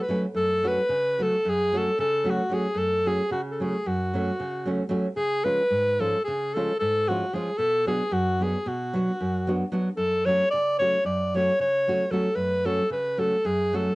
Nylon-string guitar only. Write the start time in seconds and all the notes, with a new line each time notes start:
0.08 F#3 A3 C#4 F#4
0.34 F#2
0.63 F#3 A3 C#4 F#4
0.89 C#3
1.19 F#3 A3 C#4 F#4
1.45 F#2
1.73 F#3 A3 C#4 F#4
1.99 C#3
2.24 F#3 A3 C#4 F#4
2.49 F#3 A3 C#4 F#4
2.74 F#2
3.05 F#3 A3 C#4 F#4
3.31 C#3
3.60 F#3 A3 C#4 F#4
3.86 F#2
4.14 F#3 A3 C#4 F#4
4.40 C#3
4.65 F#3 A3 C#4 F#4
4.89 F#3 A3 C#4 F#4
5.16 C#3
5.44 F3 G#3 C#4 F4
5.70 G#2
5.99 F3 G#3 C#4 F4
6.28 C#3
6.56 F3 G#3 C#4 F4
6.81 G#2
7.08 F3 G#3 C#4 F4
7.33 F3 G#3 C#4 F4
7.58 B2
7.86 F#3 B3 D4 F#4
8.11 F#2
8.40 F#3 B3 D4 F#4
8.66 B2
8.93 F#3 B3 D4 F#4
9.21 F#2
9.47 F#3 B3 D4 F#4
9.72 F#3 B3 D4 F#4
9.97 F#2
10.26 F#3 A3 C#4 F#4
10.53 C#3
10.80 F#3 A3 C#4 F#4
11.05 F#2
11.34 F#3 A3 C#4 F#4
11.60 C#3
11.87 F#3 A3 C#4 F#4
12.11 F#3 A3 C#4 F#4
12.35 F#2
12.65 F#3 A3 C#4 F#4
12.90 C#3
13.17 F#3 A3 C#4 F#4
13.45 F#2
13.73 F#3 A3 C#4 F#4